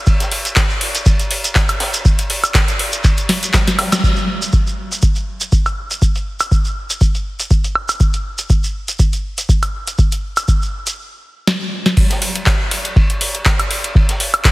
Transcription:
0.06 kick loud
0.06 ride loud
0.06 shekere medium
0.20 snare medium
0.20 closed hi-hat medium
0.20 shekere soft
0.31 open hi-hat loud
0.31 ride medium
0.45 closed hi-hat medium
0.45 ride soft
0.45 shekere medium
0.56 kick loud
0.56 snare loud
0.56 clap loud
0.56 ride medium
0.56 shekere medium
0.70 shekere soft
0.81 open hi-hat loud
0.81 ride medium
0.95 closed hi-hat medium
0.95 ride soft
0.95 shekere medium
1.06 kick loud
1.06 ride medium
1.06 shekere medium
1.20 closed hi-hat soft
1.20 shekere soft
1.31 open hi-hat loud
1.31 ride medium
1.44 closed hi-hat medium
1.44 shekere medium
1.55 kick loud
1.55 snare loud
1.55 clap loud
1.55 ride medium
1.55 shekere medium
1.69 closed hi-hat medium
1.69 high woodblock medium
1.69 shekere soft
1.80 snare loud
1.80 open hi-hat medium
1.80 ride medium
1.94 closed hi-hat medium
1.94 shekere medium
2.05 kick loud
2.05 ride medium
2.05 shekere medium
2.19 closed hi-hat medium
2.19 ride soft
2.19 shekere soft
2.30 open hi-hat medium
2.30 ride medium
2.44 closed hi-hat medium
2.44 high woodblock medium
2.44 shekere medium
2.54 kick loud
2.54 snare loud
2.54 clap loud
2.54 ride medium
2.54 shekere medium
2.68 closed hi-hat soft
2.68 shekere soft
2.79 open hi-hat loud
2.79 ride medium
2.92 closed hi-hat medium
2.92 shekere medium
3.04 kick loud
3.04 clap soft
3.04 ride loud
3.04 shekere medium
3.18 closed hi-hat soft
3.18 shekere soft
3.29 snare medium
3.29 open hi-hat loud
3.29 ride medium
3.43 closed hi-hat medium
3.43 ride soft
3.43 shekere medium
3.53 kick loud
3.53 snare loud
3.53 snare medium
3.53 clap loud
3.53 ride medium
3.53 shekere medium
3.67 snare medium
3.67 closed hi-hat medium
3.67 ride soft
3.67 shekere soft
3.79 snare loud
3.79 open hi-hat loud
3.79 ride medium
3.79 high woodblock medium
3.92 snare medium
3.92 snare loud
3.92 closed hi-hat medium
3.92 ride medium
3.92 high woodblock medium
3.92 shekere medium
4.03 kick loud
4.03 shekere medium
4.16 closed hi-hat medium
4.16 shekere soft
4.42 closed hi-hat medium
4.42 shekere medium
4.52 kick loud
4.52 shekere medium
4.67 shekere soft
4.91 closed hi-hat medium
4.91 shekere medium
5.02 kick loud
5.02 shekere medium
5.15 closed hi-hat soft
5.15 shekere soft
5.41 closed hi-hat medium
5.41 shekere medium
5.52 kick loud
5.52 shekere medium
5.66 closed hi-hat soft
5.66 high woodblock medium
5.66 shekere soft
5.91 closed hi-hat medium
5.91 shekere medium
6.02 kick loud
6.02 shekere medium
6.15 closed hi-hat medium
6.15 shekere soft
6.40 closed hi-hat medium
6.40 high woodblock medium
6.40 shekere medium
6.51 kick loud
6.51 shekere medium
6.65 shekere soft
6.90 closed hi-hat medium
6.90 shekere medium
7.01 kick loud
7.01 shekere medium
7.15 closed hi-hat soft
7.15 shekere soft
7.40 closed hi-hat medium
7.40 shekere medium
7.50 kick loud
7.50 shekere medium
7.64 closed hi-hat medium
7.64 shekere soft
7.75 high woodblock medium
7.89 closed hi-hat medium
7.89 high woodblock medium
7.89 shekere medium
8.00 kick loud
8.00 shekere medium
8.13 closed hi-hat soft
8.13 shekere soft
8.38 closed hi-hat medium
8.38 shekere medium
8.50 kick loud
8.50 shekere medium
8.64 shekere soft
8.88 closed hi-hat medium
8.88 shekere medium
8.99 kick loud
8.99 shekere medium
9.13 closed hi-hat soft
9.13 shekere soft
9.38 closed hi-hat medium
9.38 shekere medium
9.49 kick loud
9.49 shekere medium
9.63 closed hi-hat soft
9.63 high woodblock medium
9.63 shekere soft
9.87 closed hi-hat medium
9.87 shekere medium
9.98 kick loud
9.98 shekere medium
10.12 closed hi-hat soft
10.12 shekere soft
10.37 closed hi-hat medium
10.37 high woodblock medium
10.37 shekere medium
10.48 kick loud
10.48 shekere medium
10.62 shekere soft
10.87 closed hi-hat medium
10.87 shekere medium
11.47 snare loud
11.86 snare medium
11.97 kick loud
11.97 ride medium
11.97 crash loud
12.10 snare medium
12.10 closed hi-hat medium
12.22 open hi-hat loud
12.22 ride medium
12.35 closed hi-hat medium
12.35 ride soft
12.46 kick loud
12.46 snare loud
12.46 clap loud
12.46 ride medium
12.71 open hi-hat loud
12.71 ride medium
12.84 closed hi-hat medium
12.84 ride soft
12.96 kick loud
12.96 ride medium
13.10 closed hi-hat soft
13.21 open hi-hat loud
13.21 ride medium
13.35 closed hi-hat medium
13.45 kick loud
13.45 snare loud
13.45 clap loud
13.45 ride medium
13.59 closed hi-hat medium
13.59 high woodblock medium
13.71 open hi-hat loud
13.71 ride medium
13.84 closed hi-hat medium
13.84 ride soft
13.95 kick loud
13.95 ride medium
14.09 snare soft
14.09 closed hi-hat medium
14.20 open hi-hat loud
14.20 ride medium
14.34 closed hi-hat medium
14.34 high woodblock medium
14.44 kick loud
14.44 snare loud
14.44 clap loud
14.44 ride medium

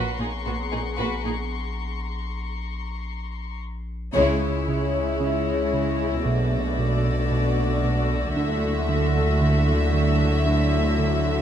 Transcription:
0.00 4.10 A#1 medium
0.00 2.05 B3 soft
0.00 0.18 F#4 soft
0.00 2.05 G#4 soft
0.00 0.18 B4 soft
0.00 2.05 F#5 soft
0.00 3.59 A#5 soft
0.00 3.58 C6 soft
0.00 3.57 C#6 soft
0.20 0.28 A#2 soft
0.20 0.28 D#4 soft
0.20 0.28 G#4 soft
0.46 0.54 A#1 soft
0.46 0.55 A#2 soft
0.46 0.54 B3 soft
0.46 0.54 F#4 soft
0.72 0.81 A#2 soft
0.72 0.80 D#4 soft
0.72 0.80 G#4 soft
0.98 1.06 A#1 soft
0.98 1.07 A#2 soft
0.98 1.23 F#4 soft
0.98 1.23 B4 soft
1.25 1.34 A#2 soft
1.25 1.33 D#4 soft
1.25 1.34 G#4 soft
4.14 6.21 C#2 soft
4.14 6.28 C#2 medium
4.14 6.21 C#3 soft
4.14 4.47 C#3 medium
4.14 6.21 G#3 soft
4.14 6.22 G#3 soft
4.14 6.21 E4 soft
4.14 6.22 G#4 medium
4.14 6.21 C#5 soft
4.14 6.21 C#5 medium
4.14 6.21 E5 medium
4.14 11.42 E6 soft
4.68 5.00 C#3 soft
5.18 5.52 C#3 soft
5.18 11.42 A#6 soft
5.73 6.05 C#3 soft
6.24 8.32 B1 soft
6.24 8.38 B1 medium
6.24 8.32 B2 soft
6.24 6.57 B2 medium
6.24 11.42 A3 soft
6.24 8.33 A3 soft
6.24 8.32 D4 soft
6.24 11.42 F#4 soft
6.24 11.42 A4 soft
6.24 8.32 D5 soft
6.24 8.36 D5 soft
6.24 11.42 F#5 soft
6.79 7.10 B2 soft
7.31 7.63 B2 soft
7.84 8.15 B2 soft
8.36 11.42 D2 soft
8.36 11.42 D2 medium
8.36 11.42 D3 soft
8.36 8.68 D3 medium
8.36 11.42 F#3 soft
8.36 11.42 E4 soft
8.36 11.42 E5 soft
8.89 9.20 D3 soft
9.41 9.73 D3 soft
9.93 10.25 D3 soft
10.46 10.78 D3 medium
10.99 11.31 D3 medium

